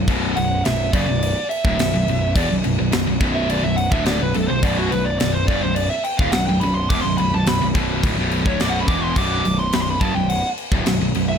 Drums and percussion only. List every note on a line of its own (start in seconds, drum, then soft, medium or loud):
0.08 kick loud
0.08 crash medium
0.37 crash medium
0.65 snare loud
0.65 crash medium
0.93 kick loud
0.93 crash medium
1.23 crash medium
1.51 crash medium
1.65 kick loud
1.79 snare loud
1.79 crash medium
2.08 crash medium
2.36 kick loud
2.36 crash medium
2.64 crash medium
2.92 snare loud
2.92 crash medium
3.21 kick loud
3.21 crash medium
3.50 crash medium
3.78 crash medium
3.92 kick loud
4.06 snare loud
4.06 crash medium
4.34 crash medium
4.63 kick loud
4.63 crash medium
4.92 crash medium
5.20 snare loud
5.20 crash medium
5.48 kick loud
5.48 crash medium
5.76 crash medium
6.04 crash medium
6.19 kick loud
6.32 snare loud
6.32 crash medium
6.61 crash medium
6.90 kick loud
6.90 crash medium
7.18 crash medium
7.46 snare loud
7.46 crash medium
7.75 kick loud
7.75 crash medium
8.04 kick loud
8.04 crash medium
8.31 crash medium
8.46 kick loud
8.60 snare loud
8.60 crash medium
8.88 kick loud
8.88 crash medium
9.16 kick loud
9.16 crash medium
9.45 crash medium
9.73 snare loud
9.73 crash medium
10.01 kick loud
10.01 crash medium
10.30 crash medium
10.58 crash medium
10.72 kick loud
10.86 snare loud
10.86 crash medium
11.15 crash medium